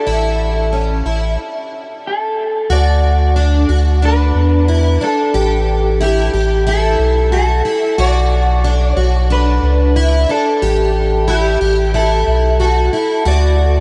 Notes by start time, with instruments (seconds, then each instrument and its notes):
Already playing: clean electric guitar A4
0.07 analog synth bass A1, twelve-string acoustic guitar E4
0.73 twelve-string acoustic guitar C#4
1.06 analog synth bass A1, twelve-string acoustic guitar E4
2.07 clean electric guitar A4
2.70 analog synth bass D2, twelve-string acoustic guitar F#4, clean electric guitar D5
3.36 twelve-string acoustic guitar D4
3.69 analog synth bass D2, twelve-string acoustic guitar F#4
4.02 twelve-string acoustic guitar D4, clean electric guitar B4
4.35 analog synth bass E2
4.68 twelve-string acoustic guitar E4
5.01 twelve-string acoustic guitar D4, clean electric guitar A4
5.34 analog synth bass A1, twelve-string acoustic guitar G4
6.01 twelve-string acoustic guitar E4, clean electric guitar G4
6.34 analog synth bass A1, twelve-string acoustic guitar G4
6.67 twelve-string acoustic guitar E4, clean electric guitar A4
6.99 analog synth bass B1
7.32 twelve-string acoustic guitar F#4, clean electric guitar A4
7.65 twelve-string acoustic guitar E4
7.98 analog synth bass B1, twelve-string acoustic guitar F#4, clean electric guitar D5
8.64 twelve-string acoustic guitar D4
8.88 clean electric guitar C#5
8.97 analog synth bass B1, twelve-string acoustic guitar F#4
9.30 twelve-string acoustic guitar D4, clean electric guitar B4
9.63 analog synth bass C#2
9.96 twelve-string acoustic guitar E4
10.29 twelve-string acoustic guitar D4, clean electric guitar A4
10.62 analog synth bass A1, twelve-string acoustic guitar G4
11.28 twelve-string acoustic guitar E4, clean electric guitar G4
11.61 analog synth bass A1, twelve-string acoustic guitar G4
11.94 twelve-string acoustic guitar E4, clean electric guitar A4
12.27 analog synth bass B1
12.60 twelve-string acoustic guitar F#4, clean electric guitar A4
12.93 twelve-string acoustic guitar E4
13.25 analog synth bass D2, twelve-string acoustic guitar F#4, clean electric guitar D5